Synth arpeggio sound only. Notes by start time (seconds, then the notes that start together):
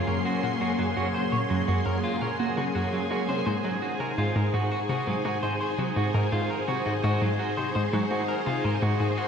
0.08 F#2
0.43 A#2
0.61 F#2
0.79 F#2
0.97 F#2
1.33 A#2
1.50 F#2
1.68 F#2
1.86 F#2
2.22 A#2
2.40 A#3
2.58 C#3
2.75 F#2
3.11 C#4
3.29 C3
3.47 G#2
3.64 G#2
4.00 C3
4.18 G#2
4.36 G#2
4.54 G#2
4.89 C3
5.07 G#2
5.25 G#2
5.43 G#2
5.79 C3
5.96 G#2
6.14 G#2
6.32 G#2
6.68 C3
6.86 G#2
7.04 G#2
7.22 G#2
7.57 C3
7.75 G#2
7.93 G#2
8.11 G#2
8.47 C3
8.65 G#2
8.83 G#2
9.00 G#2